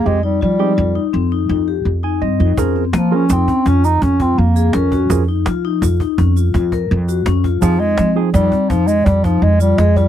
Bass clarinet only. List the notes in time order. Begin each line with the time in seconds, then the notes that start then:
0.06 G#3
0.24 G3
0.42 G3
2.96 F3
3.14 C#4
3.32 C4
3.67 C#4
3.85 D#4
4.03 C#4
4.21 C4
4.39 A#3
4.74 C#4
7.61 F3
7.80 G#3
8.34 G3
8.70 F3
8.87 G#3
9.05 G3
9.24 F3
9.43 G#3
9.61 G3
9.79 G#3
9.97 G3